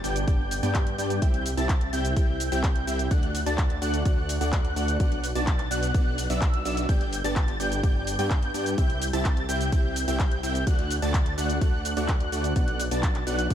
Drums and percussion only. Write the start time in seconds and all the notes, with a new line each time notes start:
0.04 open hi-hat, cabasa
0.16 closed hi-hat, cabasa
0.28 kick, closed hi-hat, cabasa
0.51 open hi-hat, cabasa
0.63 closed hi-hat, cabasa
0.75 kick, clap, closed hi-hat, cabasa
0.87 closed hi-hat
0.98 open hi-hat, cabasa
1.10 closed hi-hat, cabasa
1.22 kick, closed hi-hat, cabasa
1.34 closed hi-hat
1.46 open hi-hat, cabasa
1.58 closed hi-hat, cabasa
1.69 kick, clap, closed hi-hat, cabasa
1.81 closed hi-hat
1.93 open hi-hat, cabasa
2.05 closed hi-hat, cabasa
2.17 kick, closed hi-hat, cabasa
2.40 open hi-hat, cabasa
2.52 closed hi-hat, cabasa
2.64 kick, clap, closed hi-hat, cabasa
2.76 closed hi-hat
2.87 open hi-hat, cabasa
2.99 closed hi-hat, cabasa
3.11 kick, closed hi-hat, cabasa
3.23 closed hi-hat
3.35 open hi-hat, cabasa
3.46 closed hi-hat, cabasa
3.58 kick, clap, closed hi-hat, cabasa
3.70 closed hi-hat
3.82 open hi-hat, cabasa
3.94 closed hi-hat, cabasa
4.05 kick, closed hi-hat, cabasa
4.29 open hi-hat, cabasa
4.41 closed hi-hat, cabasa
4.53 kick, clap, closed hi-hat, cabasa
4.65 closed hi-hat
4.76 open hi-hat, cabasa
4.88 closed hi-hat, cabasa
5.00 kick, closed hi-hat, cabasa
5.12 closed hi-hat
5.24 open hi-hat, cabasa
5.35 closed hi-hat, cabasa
5.47 kick, clap, closed hi-hat, cabasa
5.59 clap, closed hi-hat
5.71 open hi-hat, cabasa
5.83 closed hi-hat, cabasa
5.94 kick, closed hi-hat, cabasa
6.18 open hi-hat, cabasa
6.30 closed hi-hat, cabasa
6.42 kick, clap, closed hi-hat, cabasa
6.54 closed hi-hat
6.65 open hi-hat, cabasa
6.77 closed hi-hat, cabasa
6.89 kick, closed hi-hat, cabasa
7.01 closed hi-hat
7.13 open hi-hat, cabasa
7.24 closed hi-hat, cabasa
7.36 kick, clap, closed hi-hat, cabasa
7.48 closed hi-hat
7.60 open hi-hat, cabasa
7.72 closed hi-hat, cabasa
7.83 kick, closed hi-hat, cabasa
8.07 open hi-hat, cabasa
8.19 closed hi-hat, cabasa
8.30 kick, clap, closed hi-hat, cabasa
8.43 closed hi-hat
8.54 open hi-hat, cabasa
8.66 closed hi-hat, cabasa
8.78 kick, closed hi-hat, cabasa
8.90 closed hi-hat
9.02 open hi-hat, cabasa
9.13 closed hi-hat, cabasa
9.25 kick, clap, closed hi-hat, cabasa
9.37 closed hi-hat
9.49 open hi-hat, cabasa
9.61 closed hi-hat, cabasa
9.72 kick, closed hi-hat, cabasa
9.96 open hi-hat, cabasa
10.08 closed hi-hat, cabasa
10.19 kick, clap, closed hi-hat, cabasa
10.31 closed hi-hat
10.43 open hi-hat, cabasa
10.55 closed hi-hat, cabasa
10.67 kick, closed hi-hat, cabasa
10.79 closed hi-hat
10.91 open hi-hat, cabasa
11.02 closed hi-hat, cabasa
11.14 kick, clap, closed hi-hat, cabasa
11.26 closed hi-hat
11.38 open hi-hat, cabasa
11.50 closed hi-hat, cabasa
11.61 kick, closed hi-hat, cabasa
11.85 open hi-hat, cabasa
11.97 closed hi-hat, cabasa
12.08 kick, clap, closed hi-hat, cabasa
12.20 closed hi-hat
12.32 open hi-hat, cabasa
12.44 closed hi-hat, cabasa
12.56 kick, closed hi-hat, cabasa
12.68 closed hi-hat
12.80 open hi-hat, cabasa
12.91 closed hi-hat, cabasa
13.03 kick, clap, closed hi-hat, cabasa
13.15 clap, closed hi-hat
13.27 open hi-hat, cabasa
13.39 closed hi-hat, cabasa
13.50 kick, closed hi-hat